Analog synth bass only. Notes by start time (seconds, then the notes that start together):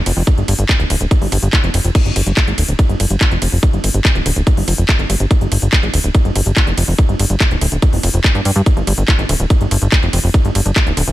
0.06 F1
0.17 F1
0.38 G1
0.48 G1
0.59 G1
0.80 D1
0.90 D1
1.01 D1
1.22 G1
1.32 G1
1.43 G1
1.64 F1
1.74 F1
1.84 F1
2.05 G1
2.16 G1
2.26 G1
2.47 G#1
2.58 D1
2.68 D1
2.89 G1
3.00 G1
3.10 G1
3.31 F1
3.42 F1
3.52 F1
3.73 G1
3.84 G1
3.94 G1
4.15 D1
4.26 D1
4.36 D1
4.57 G1
4.68 F1
4.78 F1
4.99 G1
5.10 G1
5.20 G1
5.41 G1
5.52 G1
5.62 G1
5.83 G#1
5.94 D1
6.04 D1
6.25 G1
6.36 G1
6.46 G1
6.67 F1
6.78 F1
6.88 F1
7.09 G1
7.19 G1
7.30 G1
7.51 D1
7.61 D1
7.72 D1
7.93 F1
8.03 F1
8.14 F1
8.35 G2
8.45 G2
8.56 G2
8.77 G1
8.87 G1
8.98 G1
9.19 G#1
9.29 D1
9.40 D1
9.61 G1
9.71 G1
9.82 G1
10.03 F1
10.13 F1
10.24 F1
10.45 G1
10.55 G1
10.66 G1
10.87 D1
10.97 D1
11.08 D1